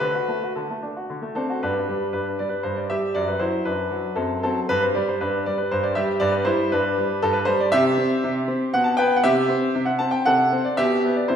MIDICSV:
0, 0, Header, 1, 2, 480
1, 0, Start_track
1, 0, Key_signature, 1, "major"
1, 0, Tempo, 528634
1, 11, Time_signature, 3, 2, 24, 8
1, 2411, Tempo, 508044
1, 10634, End_track
2, 0, Start_track
2, 0, Title_t, "Grand piano"
2, 0, Program_c, 0, 0
2, 0, Note_on_c, 0, 71, 91
2, 8, Note_on_c, 0, 50, 63
2, 129, Note_off_c, 0, 50, 0
2, 133, Note_on_c, 0, 66, 44
2, 259, Note_on_c, 0, 57, 50
2, 263, Note_off_c, 0, 66, 0
2, 388, Note_off_c, 0, 57, 0
2, 395, Note_on_c, 0, 66, 38
2, 460, Note_off_c, 0, 71, 0
2, 503, Note_on_c, 0, 69, 47
2, 509, Note_on_c, 0, 50, 41
2, 516, Note_off_c, 0, 66, 0
2, 624, Note_off_c, 0, 50, 0
2, 639, Note_on_c, 0, 57, 38
2, 749, Note_on_c, 0, 62, 42
2, 758, Note_off_c, 0, 57, 0
2, 793, Note_off_c, 0, 69, 0
2, 874, Note_off_c, 0, 62, 0
2, 878, Note_on_c, 0, 66, 38
2, 998, Note_off_c, 0, 66, 0
2, 998, Note_on_c, 0, 50, 45
2, 1108, Note_on_c, 0, 57, 47
2, 1110, Note_off_c, 0, 50, 0
2, 1228, Note_on_c, 0, 69, 66
2, 1232, Note_on_c, 0, 60, 55
2, 1236, Note_off_c, 0, 57, 0
2, 1236, Note_on_c, 0, 62, 43
2, 1360, Note_on_c, 0, 66, 46
2, 1361, Note_off_c, 0, 62, 0
2, 1447, Note_off_c, 0, 69, 0
2, 1456, Note_off_c, 0, 60, 0
2, 1476, Note_off_c, 0, 66, 0
2, 1477, Note_on_c, 0, 71, 70
2, 1481, Note_on_c, 0, 43, 56
2, 1484, Note_on_c, 0, 62, 55
2, 1707, Note_off_c, 0, 43, 0
2, 1716, Note_on_c, 0, 55, 47
2, 1910, Note_off_c, 0, 71, 0
2, 1918, Note_off_c, 0, 62, 0
2, 1934, Note_on_c, 0, 71, 57
2, 1937, Note_on_c, 0, 43, 42
2, 1940, Note_off_c, 0, 55, 0
2, 1942, Note_on_c, 0, 62, 38
2, 2160, Note_off_c, 0, 62, 0
2, 2167, Note_off_c, 0, 43, 0
2, 2170, Note_on_c, 0, 74, 59
2, 2172, Note_off_c, 0, 71, 0
2, 2177, Note_on_c, 0, 55, 43
2, 2262, Note_on_c, 0, 71, 48
2, 2291, Note_off_c, 0, 74, 0
2, 2390, Note_on_c, 0, 72, 64
2, 2395, Note_off_c, 0, 71, 0
2, 2399, Note_on_c, 0, 43, 49
2, 2404, Note_off_c, 0, 55, 0
2, 2517, Note_on_c, 0, 74, 47
2, 2521, Note_off_c, 0, 72, 0
2, 2639, Note_on_c, 0, 76, 79
2, 2640, Note_off_c, 0, 43, 0
2, 2646, Note_off_c, 0, 74, 0
2, 2646, Note_on_c, 0, 55, 45
2, 2650, Note_on_c, 0, 67, 51
2, 2874, Note_on_c, 0, 74, 85
2, 2876, Note_off_c, 0, 67, 0
2, 2883, Note_off_c, 0, 55, 0
2, 2883, Note_on_c, 0, 42, 62
2, 2887, Note_off_c, 0, 76, 0
2, 3000, Note_on_c, 0, 71, 53
2, 3004, Note_off_c, 0, 74, 0
2, 3109, Note_on_c, 0, 72, 69
2, 3117, Note_on_c, 0, 54, 52
2, 3120, Note_on_c, 0, 64, 51
2, 3121, Note_off_c, 0, 42, 0
2, 3127, Note_off_c, 0, 71, 0
2, 3351, Note_off_c, 0, 64, 0
2, 3353, Note_on_c, 0, 71, 67
2, 3359, Note_off_c, 0, 54, 0
2, 3359, Note_on_c, 0, 42, 43
2, 3362, Note_off_c, 0, 72, 0
2, 3364, Note_on_c, 0, 62, 43
2, 3595, Note_on_c, 0, 54, 45
2, 3601, Note_off_c, 0, 42, 0
2, 3819, Note_off_c, 0, 62, 0
2, 3829, Note_on_c, 0, 69, 71
2, 3835, Note_on_c, 0, 42, 55
2, 3838, Note_on_c, 0, 60, 50
2, 3840, Note_off_c, 0, 54, 0
2, 3847, Note_off_c, 0, 71, 0
2, 4062, Note_off_c, 0, 69, 0
2, 4075, Note_off_c, 0, 60, 0
2, 4083, Note_off_c, 0, 42, 0
2, 4090, Note_on_c, 0, 69, 79
2, 4097, Note_on_c, 0, 54, 54
2, 4102, Note_on_c, 0, 60, 57
2, 4239, Note_off_c, 0, 69, 0
2, 4328, Note_off_c, 0, 60, 0
2, 4334, Note_off_c, 0, 54, 0
2, 4334, Note_on_c, 0, 71, 104
2, 4341, Note_on_c, 0, 43, 73
2, 4459, Note_off_c, 0, 71, 0
2, 4460, Note_on_c, 0, 72, 55
2, 4575, Note_off_c, 0, 43, 0
2, 4576, Note_on_c, 0, 74, 64
2, 4581, Note_off_c, 0, 72, 0
2, 4591, Note_on_c, 0, 55, 65
2, 4699, Note_off_c, 0, 74, 0
2, 4708, Note_on_c, 0, 72, 56
2, 4818, Note_off_c, 0, 55, 0
2, 4822, Note_on_c, 0, 71, 72
2, 4824, Note_off_c, 0, 72, 0
2, 4826, Note_on_c, 0, 43, 56
2, 4829, Note_on_c, 0, 62, 54
2, 5036, Note_off_c, 0, 71, 0
2, 5047, Note_off_c, 0, 62, 0
2, 5055, Note_off_c, 0, 43, 0
2, 5063, Note_on_c, 0, 74, 70
2, 5073, Note_on_c, 0, 55, 50
2, 5171, Note_on_c, 0, 71, 59
2, 5180, Note_off_c, 0, 74, 0
2, 5294, Note_off_c, 0, 71, 0
2, 5297, Note_off_c, 0, 55, 0
2, 5301, Note_on_c, 0, 72, 80
2, 5306, Note_on_c, 0, 43, 64
2, 5414, Note_on_c, 0, 74, 73
2, 5418, Note_off_c, 0, 72, 0
2, 5526, Note_on_c, 0, 76, 91
2, 5532, Note_off_c, 0, 43, 0
2, 5534, Note_off_c, 0, 74, 0
2, 5537, Note_on_c, 0, 67, 70
2, 5540, Note_on_c, 0, 55, 64
2, 5672, Note_off_c, 0, 76, 0
2, 5758, Note_off_c, 0, 67, 0
2, 5758, Note_on_c, 0, 74, 107
2, 5769, Note_off_c, 0, 55, 0
2, 5769, Note_on_c, 0, 43, 78
2, 5874, Note_on_c, 0, 71, 65
2, 5885, Note_off_c, 0, 74, 0
2, 5994, Note_on_c, 0, 72, 90
2, 5999, Note_on_c, 0, 55, 68
2, 6004, Note_off_c, 0, 43, 0
2, 6004, Note_off_c, 0, 71, 0
2, 6005, Note_on_c, 0, 64, 71
2, 6231, Note_off_c, 0, 64, 0
2, 6238, Note_off_c, 0, 55, 0
2, 6243, Note_off_c, 0, 72, 0
2, 6250, Note_on_c, 0, 71, 82
2, 6262, Note_on_c, 0, 62, 66
2, 6263, Note_on_c, 0, 43, 62
2, 6489, Note_off_c, 0, 43, 0
2, 6500, Note_on_c, 0, 55, 53
2, 6701, Note_off_c, 0, 62, 0
2, 6727, Note_off_c, 0, 55, 0
2, 6728, Note_off_c, 0, 71, 0
2, 6728, Note_on_c, 0, 69, 106
2, 6735, Note_on_c, 0, 43, 67
2, 6827, Note_on_c, 0, 71, 75
2, 6848, Note_off_c, 0, 69, 0
2, 6944, Note_on_c, 0, 72, 100
2, 6957, Note_off_c, 0, 71, 0
2, 6959, Note_on_c, 0, 55, 72
2, 6963, Note_off_c, 0, 43, 0
2, 7074, Note_off_c, 0, 72, 0
2, 7086, Note_on_c, 0, 74, 81
2, 7192, Note_off_c, 0, 55, 0
2, 7194, Note_on_c, 0, 76, 127
2, 7200, Note_on_c, 0, 67, 88
2, 7203, Note_off_c, 0, 74, 0
2, 7205, Note_on_c, 0, 48, 88
2, 7432, Note_off_c, 0, 48, 0
2, 7437, Note_on_c, 0, 60, 76
2, 7668, Note_off_c, 0, 60, 0
2, 7685, Note_on_c, 0, 48, 68
2, 7769, Note_off_c, 0, 76, 0
2, 7913, Note_on_c, 0, 60, 62
2, 7914, Note_off_c, 0, 48, 0
2, 8117, Note_off_c, 0, 67, 0
2, 8147, Note_off_c, 0, 60, 0
2, 8156, Note_on_c, 0, 78, 97
2, 8162, Note_on_c, 0, 47, 77
2, 8255, Note_on_c, 0, 81, 76
2, 8276, Note_off_c, 0, 78, 0
2, 8376, Note_on_c, 0, 79, 100
2, 8385, Note_off_c, 0, 81, 0
2, 8392, Note_off_c, 0, 47, 0
2, 8393, Note_on_c, 0, 59, 78
2, 8393, Note_on_c, 0, 71, 82
2, 8556, Note_off_c, 0, 71, 0
2, 8559, Note_off_c, 0, 79, 0
2, 8559, Note_on_c, 0, 78, 81
2, 8625, Note_off_c, 0, 59, 0
2, 8628, Note_off_c, 0, 78, 0
2, 8628, Note_on_c, 0, 76, 119
2, 8632, Note_on_c, 0, 48, 83
2, 8632, Note_on_c, 0, 67, 89
2, 8862, Note_off_c, 0, 48, 0
2, 8868, Note_on_c, 0, 60, 68
2, 9101, Note_off_c, 0, 60, 0
2, 9115, Note_on_c, 0, 48, 64
2, 9190, Note_off_c, 0, 76, 0
2, 9192, Note_off_c, 0, 67, 0
2, 9212, Note_on_c, 0, 78, 72
2, 9338, Note_on_c, 0, 81, 81
2, 9343, Note_off_c, 0, 78, 0
2, 9347, Note_off_c, 0, 48, 0
2, 9350, Note_on_c, 0, 60, 58
2, 9455, Note_on_c, 0, 79, 78
2, 9466, Note_off_c, 0, 81, 0
2, 9586, Note_off_c, 0, 79, 0
2, 9587, Note_off_c, 0, 60, 0
2, 9591, Note_on_c, 0, 78, 107
2, 9599, Note_on_c, 0, 69, 77
2, 9605, Note_on_c, 0, 48, 68
2, 9838, Note_off_c, 0, 48, 0
2, 9846, Note_on_c, 0, 60, 65
2, 9939, Note_off_c, 0, 69, 0
2, 9958, Note_on_c, 0, 74, 69
2, 9961, Note_off_c, 0, 78, 0
2, 10080, Note_on_c, 0, 76, 112
2, 10081, Note_off_c, 0, 60, 0
2, 10083, Note_off_c, 0, 74, 0
2, 10087, Note_on_c, 0, 67, 87
2, 10090, Note_on_c, 0, 47, 78
2, 10300, Note_off_c, 0, 76, 0
2, 10324, Note_off_c, 0, 47, 0
2, 10338, Note_on_c, 0, 59, 67
2, 10425, Note_off_c, 0, 67, 0
2, 10447, Note_on_c, 0, 74, 62
2, 10562, Note_on_c, 0, 72, 83
2, 10568, Note_off_c, 0, 59, 0
2, 10569, Note_off_c, 0, 74, 0
2, 10576, Note_on_c, 0, 48, 59
2, 10576, Note_on_c, 0, 64, 56
2, 10634, Note_off_c, 0, 48, 0
2, 10634, Note_off_c, 0, 64, 0
2, 10634, Note_off_c, 0, 72, 0
2, 10634, End_track
0, 0, End_of_file